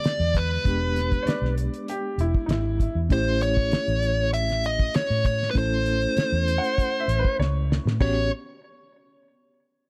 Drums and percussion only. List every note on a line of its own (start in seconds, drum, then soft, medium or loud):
0.04 snare loud
0.04 closed hi-hat medium
0.35 kick medium
0.35 closed hi-hat medium
0.65 kick loud
0.65 closed hi-hat medium
0.96 snare soft
0.96 closed hi-hat medium
1.12 kick medium
1.12 closed hi-hat soft
1.27 snare loud
1.27 closed hi-hat medium
1.45 snare soft
1.58 closed hi-hat medium
1.74 closed hi-hat soft
1.88 closed hi-hat medium
2.19 closed hi-hat medium
2.35 kick medium
2.49 snare loud
2.49 closed hi-hat medium
2.80 kick medium
2.80 closed hi-hat medium
3.10 kick loud
3.10 closed hi-hat medium
3.41 closed hi-hat medium
3.57 kick medium
3.72 snare loud
3.72 closed hi-hat medium
3.88 closed hi-hat soft
4.02 closed hi-hat medium
4.33 closed hi-hat medium
4.49 snare soft
4.49 closed hi-hat soft
4.64 closed hi-hat medium
4.79 kick medium
4.79 closed hi-hat soft
4.94 snare loud
4.94 closed hi-hat medium
5.25 kick medium
5.25 closed hi-hat medium
5.43 snare soft
5.55 kick loud
5.55 closed hi-hat medium
5.86 closed hi-hat medium
6.02 closed hi-hat soft
6.17 snare loud
6.17 closed hi-hat medium
6.48 closed hi-hat medium
6.64 closed hi-hat soft
6.78 kick medium
6.78 closed hi-hat medium
7.09 closed hi-hat medium
7.25 kick medium
7.41 snare medium
7.72 snare medium
7.87 snare medium
8.00 kick loud
8.00 crash medium